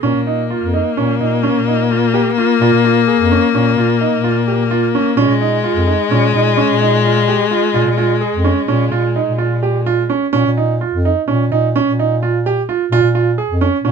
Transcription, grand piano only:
0.03 0.18 C#4 medium
0.27 0.42 D#4 medium
0.50 0.65 F4 medium
0.73 0.88 D#4 medium
0.97 1.12 C#4 medium
1.20 1.35 D#4 medium
1.43 1.58 C#4 medium
1.68 1.82 D#4 medium
1.91 2.05 F4 medium
2.14 2.29 G4 medium
2.38 2.52 F4 medium
2.62 2.76 F4 medium
2.84 2.99 F4 medium
3.08 3.22 G#4 medium
3.31 3.46 C#4 medium
3.55 3.69 C#4 medium
3.78 3.92 F4 medium
4.01 4.15 D#4 medium
4.24 4.39 F4 medium
4.48 4.62 G4 medium
4.71 4.85 F4 medium
4.95 5.09 C#4 medium
5.17 5.32 C#4 medium
5.41 5.55 D#4 medium
5.64 5.79 F4 medium
5.87 6.02 D#4 medium
6.11 6.26 C#4 medium
6.34 6.49 D#4 medium
6.57 6.72 C#4 medium
6.81 6.96 D#4 medium
7.05 7.20 F4 medium
7.28 7.43 G4 medium
7.51 7.66 F4 medium
7.74 7.89 F4 medium
7.98 8.13 F4 medium
8.21 8.36 G#4 medium
8.44 8.59 C#4 medium
8.68 8.83 C#4 medium
8.92 9.07 F4 medium
9.16 9.30 D#4 medium
9.38 9.53 F4 medium
9.63 9.78 G4 medium
9.86 10.01 F4 medium
10.10 10.25 C#4 medium
10.33 10.48 C#4 medium
10.57 10.72 D#4 medium
10.81 10.96 F4 medium
11.05 11.20 D#4 medium
11.28 11.43 C#4 medium
11.52 11.66 D#4 medium
11.76 11.90 C#4 medium
11.99 12.14 D#4 medium
12.23 12.37 F4 medium
12.46 12.60 G4 medium
12.69 12.83 F4 medium
12.92 13.07 F4 loud
13.15 13.29 F4 medium
13.38 13.52 G#4 medium
13.61 13.76 C#4 medium
13.85 13.92 C#4 medium

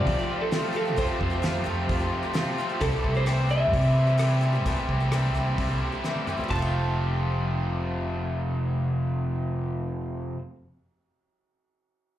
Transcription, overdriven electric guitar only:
0.06 0.52 F2 medium
0.06 0.52 C3 medium
0.06 0.30 F3 loud
0.06 0.31 A3 medium
0.06 0.29 C4 medium
0.06 0.28 F4 medium
0.29 0.51 F3 medium
0.29 0.53 A3 medium
0.29 0.54 C4 medium
0.29 0.54 F4 medium
0.52 0.77 F3 medium
0.52 0.77 A3 medium
0.52 0.76 C4 medium
0.52 0.74 F4 medium
0.75 0.98 F3 medium
0.75 0.99 A3 medium
0.75 0.99 C4 medium
0.75 0.99 F4 medium
0.98 1.42 F2 medium
0.98 1.43 C3 medium
0.98 1.22 F3 medium
0.98 1.22 A3 medium
0.98 1.21 C4 medium
0.98 1.19 F4 medium
1.20 1.43 F3 medium
1.20 1.44 A3 medium
1.20 1.45 C4 medium
1.20 1.44 F4 medium
1.43 1.87 F2 medium
1.43 1.88 C3 medium
1.43 1.68 F3 medium
1.43 1.68 A3 medium
1.43 1.67 C4 loud
1.43 1.65 F4 medium
1.66 1.89 F3 medium
1.66 1.90 A3 medium
1.66 1.90 C4 medium
1.66 1.90 F4 medium
1.88 2.35 F2 medium
1.88 2.35 C3 medium
1.88 2.14 F3 medium
1.88 2.14 A3 medium
1.88 2.12 C4 medium
1.88 2.11 F4 loud
2.12 2.33 F3 medium
2.12 2.35 A3 medium
2.12 2.36 C4 medium
2.12 2.36 F4 medium
2.34 2.59 F3 medium
2.34 2.59 A3 medium
2.34 2.58 C4 medium
2.34 2.56 F4 medium
2.57 2.80 F3 medium
2.57 2.81 A3 medium
2.57 2.81 C4 medium
2.57 2.79 F4 medium
2.80 3.26 C3 medium
2.80 3.27 E3 medium
2.80 3.05 G3 medium
2.80 3.05 C4 medium
2.80 3.03 E4 medium
3.03 3.27 G3 medium
3.03 3.28 C4 medium
3.03 3.29 E4 medium
3.26 3.73 C3 medium
3.26 3.73 E3 medium
3.26 3.52 G3 medium
3.26 3.51 C4 medium
3.26 3.49 E4 medium
3.50 3.74 G3 medium
3.50 3.74 C4 medium
3.50 3.75 E4 medium
3.73 4.19 C3 medium
3.73 4.18 E3 medium
3.73 3.99 G3 medium
3.73 3.98 C4 medium
3.73 3.96 E4 medium
3.97 4.19 G3 medium
3.97 4.20 C4 medium
3.97 4.20 E4 medium
4.19 4.65 E3 medium
4.19 4.44 G3 medium
4.19 4.43 C4 medium
4.19 4.41 E4 medium
4.42 4.66 G3 medium
4.42 4.66 C4 medium
4.42 4.67 E4 medium
4.65 5.10 C3 medium
4.65 5.11 E3 medium
4.65 4.90 G3 medium
4.65 4.89 C4 medium
4.65 4.87 E4 medium
4.88 5.12 G3 soft
4.88 5.12 C4 medium
4.88 5.13 E4 medium
5.11 5.56 C3 medium
5.11 5.57 E3 medium
5.11 5.36 G3 medium
5.11 5.35 C4 medium
5.11 5.33 E4 medium
5.34 5.58 G3 soft
5.34 5.59 C4 medium
5.34 5.59 E4 medium
5.58 6.04 C3 medium
5.58 6.02 E3 medium
5.58 5.82 G3 medium
5.58 5.82 C4 medium
5.58 5.80 E4 medium
5.81 6.03 G3 soft
5.81 6.04 C4 medium
5.81 6.05 E4 medium
6.03 6.49 E3 medium
6.03 6.28 G3 medium
6.03 6.26 C4 medium
6.03 6.25 E4 medium
6.26 6.50 G3 soft
6.26 6.49 C4 medium
6.26 6.49 E4 medium
6.49 10.35 F2 medium
6.49 10.36 C3 medium
6.49 10.37 F3 medium
6.49 10.37 A3 medium
6.49 10.38 C4 medium
6.49 10.39 F4 medium

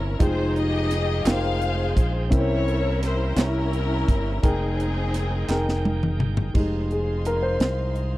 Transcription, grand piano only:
0.00 0.16 C3 medium
0.00 0.22 C#4 medium
0.00 0.22 E4 medium
0.00 0.22 A#4 medium
0.00 0.21 C5 medium
0.19 1.15 G#3 medium
0.19 1.14 D#4 medium
0.19 1.15 F4 medium
0.19 1.15 G5 medium
1.26 2.20 D#4 medium
1.26 2.20 F4 medium
1.26 2.21 A#4 medium
1.26 2.21 G5 medium
2.30 3.33 C3 medium
2.30 3.26 C4 medium
2.30 3.26 C#4 medium
2.30 3.26 E4 medium
2.30 3.26 A#4 medium
3.36 4.32 C#4 medium
3.36 4.32 E4 medium
3.36 4.32 A#4 medium
3.36 4.32 C#5 medium
4.43 5.38 D#4 medium
4.43 5.38 G#4 medium
4.43 5.38 A#4 medium
4.43 5.38 G5 medium
5.49 6.44 D#4 medium
5.49 6.44 G#4 medium
5.49 6.44 A#4 medium
5.49 6.44 G5 medium
6.54 7.57 G#3 soft
6.54 7.57 D#4 medium
6.54 7.56 G4 soft
6.92 7.28 G#4 medium
7.26 7.42 A#4 medium
7.43 8.18 C5 medium

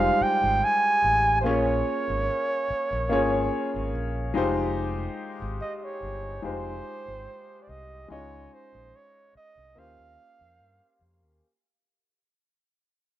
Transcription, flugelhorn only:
0.00 0.24 F5 loud
0.23 0.66 G5 loud
0.64 1.40 G#5 loud
1.41 1.48 C5 medium
1.47 3.95 C#5 medium
5.61 5.77 D#5 medium
5.77 5.86 D#5 medium
5.84 6.44 C#5 medium
6.45 7.64 C5 medium
7.63 7.71 D5 medium
7.69 8.10 D#5 medium
8.12 8.55 C#5 medium
8.54 8.97 C5 medium
8.96 9.36 C#5 medium
9.37 9.80 D#5 loud
9.79 11.02 F5 loud

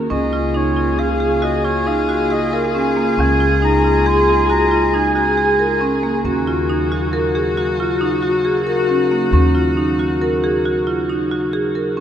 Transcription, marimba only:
0.10 0.24 C#4 medium
0.33 0.46 F4 medium
0.54 0.68 D#4 medium
0.76 0.90 F4 medium
0.99 1.12 G#4 medium
1.20 1.33 G#4 medium
1.42 1.55 F#4 medium
1.64 1.78 F4 medium
1.87 2.00 D#4 medium
2.09 2.22 F#4 medium
2.30 2.43 G#4 medium
2.53 2.66 A#4 medium
2.75 2.88 C#4 medium
2.97 3.10 A#3 medium
3.19 3.32 C#4 medium
3.40 3.53 F4 medium
3.62 3.75 D#4 medium
3.84 3.97 F4 medium
4.06 4.19 G#4 medium
4.28 4.41 G#4 medium
4.50 4.63 F#4 medium
4.71 4.84 F4 medium
4.94 5.07 D#4 medium
5.16 5.29 F#4 medium
5.38 5.51 G#4 medium
5.59 5.73 A#4 medium
5.81 5.94 C#4 medium
6.03 6.16 A#3 medium
6.25 6.38 C#4 medium
6.47 6.61 F4 medium
6.69 6.83 D#4 medium
6.92 7.05 F#4 medium
7.13 7.26 A#4 medium
7.35 7.48 G#4 medium
7.57 7.70 F#4 medium
7.80 7.93 F4 medium
8.01 8.14 D#4 medium
8.23 8.36 F#4 medium
8.45 8.58 G#4 medium
8.67 8.80 A#4 medium
8.89 9.02 C#4 medium
9.11 9.24 A#3 medium
9.33 9.46 C#4 medium
9.55 9.68 F4 medium
9.77 9.90 D#4 medium
9.99 10.12 F#4 medium
10.21 10.34 A#4 medium
10.44 10.57 G#4 medium
10.65 10.78 F#4 medium
10.87 11.00 F4 medium
11.10 11.22 D#4 medium
11.31 11.44 F#4 medium
11.53 11.66 G#4 medium
11.75 11.88 A#4 medium
11.97 12.00 C#4 medium

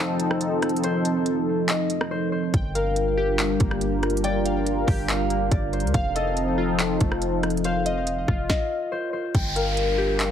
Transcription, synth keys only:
2.54 3.81 G5 medium
2.75 4.03 F5 medium
3.17 4.45 G4 medium
3.60 4.88 A#3 medium
4.24 5.52 G5 loud
4.46 5.73 F5 medium
4.87 5.94 G4 loud
5.30 5.94 A#3 medium
5.94 7.22 F5 loud
6.15 7.43 D#5 medium
6.58 7.86 F4 loud
7.01 8.28 A3 medium
7.65 8.92 F5 loud
7.86 9.13 D#5 medium
8.28 9.34 F4 medium
9.35 10.31 G5 loud
9.56 10.31 F5 medium
9.98 10.31 G4 loud

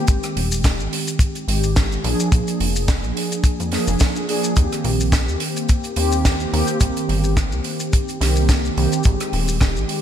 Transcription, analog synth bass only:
0.08 0.18 G#1 loud
0.36 0.81 D#1 medium
0.79 0.88 G#1 medium
1.48 1.97 G#1 medium
2.04 2.14 A#1 loud
2.32 2.42 A#1 loud
2.60 3.05 F1 medium
3.04 3.12 A#1 medium
3.60 3.77 F2 medium
3.88 3.96 F1 medium
4.57 4.67 D#2 medium
4.84 5.29 A#1 medium
5.28 5.36 D#2 medium
5.96 6.46 D#2 medium
6.53 6.63 D#2 loud
6.81 6.91 C2 loud
7.09 7.54 G1 medium
7.52 7.61 C2 medium
8.21 8.70 C2 medium
8.77 8.87 C2 loud
9.05 9.16 G#1 loud
9.33 9.78 D#1 medium
9.76 9.85 G#1 medium

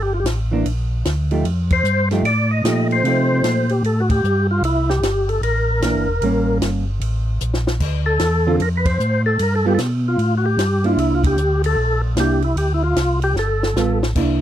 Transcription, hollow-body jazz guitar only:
0.51 0.64 E3 medium
0.51 0.65 A#3 medium
0.51 0.65 D4 medium
1.31 1.44 F3 medium
1.31 1.44 A3 medium
1.31 1.44 D#4 medium
1.31 1.44 G4 medium
2.11 2.24 F3 medium
2.11 2.23 A3 medium
2.11 2.24 D#4 medium
2.11 2.24 G4 medium
2.64 3.04 F3 medium
2.64 3.05 A3 medium
2.64 3.05 D#4 medium
2.64 3.05 G4 medium
3.05 3.65 F3 medium
3.05 3.65 A3 medium
3.05 3.66 D#4 medium
3.05 3.65 G4 medium
5.83 6.06 E3 medium
5.83 6.06 A#3 medium
5.83 6.06 D4 medium
6.23 6.83 G3 medium
6.23 6.83 A#3 medium
6.23 6.83 C#4 medium
8.47 8.59 D3 medium
8.47 8.59 C4 medium
8.47 8.59 F4 medium
8.47 8.59 A4 medium
9.65 9.77 G3 medium
9.65 9.78 B3 medium
9.65 9.78 F4 medium
9.65 9.78 A4 medium
10.84 11.35 A#3 medium
10.84 11.35 D4 medium
10.84 11.36 E4 medium
12.17 12.40 A#3 medium
12.17 12.40 D4 medium
12.17 12.40 E4 medium
13.76 13.99 G3 medium
13.76 13.99 B3 medium
13.76 13.99 F4 medium
13.76 14.00 A4 medium
14.16 14.41 A#3 medium
14.16 14.41 D4 medium
14.16 14.41 E4 medium

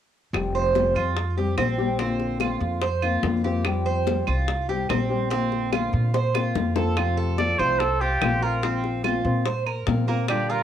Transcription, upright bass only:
0.33 0.91 F1 medium
0.95 1.54 F2 medium
1.58 2.55 A#1 medium
2.61 3.19 F2 medium
3.23 4.21 F2 medium
4.28 4.86 C2 medium
4.90 5.88 A#1 medium
5.94 6.52 A#2 medium
6.55 7.53 F2 medium
7.59 8.18 C2 medium
8.22 9.19 A#1 medium
9.24 9.83 A#2 medium
9.87 10.63 A#2 medium

